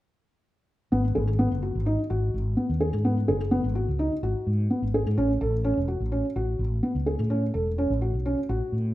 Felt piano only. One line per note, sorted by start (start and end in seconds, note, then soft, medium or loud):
0.92 1.04 B3 medium
1.15 1.27 G#4 medium
1.39 1.51 B3 medium
1.62 1.75 F#4 soft
1.86 1.98 D#4 medium
2.10 2.34 F#4 medium
2.57 2.69 B3 medium
2.81 2.93 G#4 medium
3.05 3.17 B3 medium
3.28 3.40 G#4 medium
3.51 3.63 B3 medium
3.75 3.87 F#4 medium
3.99 4.11 D#4 medium
4.23 4.47 F#4 medium
4.70 4.82 B3 medium
4.94 5.06 G#4 medium
5.18 5.30 C#4 medium
5.41 5.53 A4 medium
5.64 5.77 C#4 medium
5.88 6.00 F#4 medium
6.12 6.24 C#4 medium
6.36 6.60 F#4 medium
6.83 6.95 B3 soft
7.06 7.19 G#4 medium
7.30 7.42 C#4 medium
7.54 7.66 A4 medium
7.78 7.90 C#4 medium
8.01 8.13 F#4 medium
8.26 8.37 C#4 medium
8.49 8.73 F#4 medium